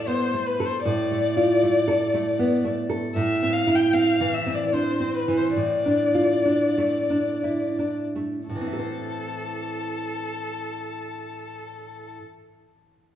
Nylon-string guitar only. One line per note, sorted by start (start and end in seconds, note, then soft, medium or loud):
0.00 0.81 A2 medium
0.00 0.23 A3 soft
0.07 0.33 B3 soft
0.34 0.75 A3 soft
0.60 0.85 A4 soft
0.85 3.11 A2 medium
1.11 1.52 A3 soft
1.37 1.77 F4 soft
1.63 2.03 A3 soft
1.88 2.28 A4 soft
2.14 2.54 A3 soft
2.39 2.64 B3 soft
2.64 3.05 A3 soft
2.89 3.15 A4 medium
3.16 5.53 A2 medium
3.42 3.83 C4 soft
3.67 4.09 E4 soft
3.93 4.35 C4 soft
4.20 4.62 E3 soft
4.46 4.89 C4 soft
4.73 4.99 D4 soft
5.00 5.45 C4 soft
5.28 5.56 E3 soft
5.57 8.45 A2 soft
5.85 6.33 D4 soft
6.14 6.64 F4 soft
6.45 6.96 D4 soft
6.78 7.30 A3 soft
7.10 7.64 D4 soft
7.44 7.79 E4 soft
7.79 8.36 D4 soft
8.15 8.49 A3 soft
8.49 12.18 A2 soft
8.55 12.24 E3 soft
8.61 12.29 C4 soft
8.67 8.78 E4 soft
8.73 12.41 A4 soft
8.79 12.47 C5 soft